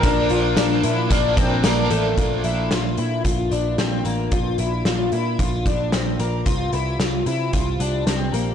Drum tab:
HH |xxxxxxxx|xxxxxxxx|xxxxxxxx|xxxxxxxx|
TB |--x---x-|--------|--------|--------|
SD |--o---o-|--o---o-|--o---o-|--o---o-|
BD |o---oo--|o---o---|o---oo--|o---o---|